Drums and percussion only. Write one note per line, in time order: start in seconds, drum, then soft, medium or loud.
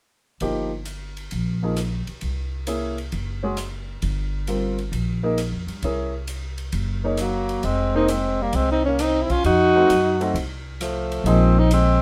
0.40 ride soft
0.85 hi-hat pedal soft
0.85 ride soft
1.17 ride soft
1.31 ride soft
1.76 cross-stick soft
1.76 hi-hat pedal soft
1.76 ride soft
2.07 ride soft
2.21 ride soft
2.67 hi-hat pedal soft
2.67 ride soft
2.98 ride soft
3.12 ride soft
3.57 cross-stick soft
3.57 hi-hat pedal soft
3.57 ride soft
4.02 ride soft
4.47 hi-hat pedal soft
4.47 ride soft
4.78 ride soft
4.93 ride soft
5.38 cross-stick soft
5.38 hi-hat pedal soft
5.38 ride medium
5.68 ride soft
5.82 ride soft
6.27 hi-hat pedal soft
6.27 ride soft
6.58 ride soft
6.72 ride soft
7.17 cross-stick soft
7.17 hi-hat pedal soft
7.17 ride soft
7.49 ride soft
7.63 ride soft
8.08 hi-hat pedal soft
8.08 ride medium
8.53 ride medium
8.99 cross-stick soft
8.99 hi-hat pedal soft
8.99 ride medium
9.30 kick medium
9.30 ride soft
9.44 ride soft
9.90 hi-hat pedal soft
9.90 ride medium
10.21 ride soft
10.36 ride soft
10.81 cross-stick medium
10.81 hi-hat pedal soft
10.81 ride soft
11.12 ride soft
11.26 ride soft
11.71 hi-hat pedal soft
11.71 ride medium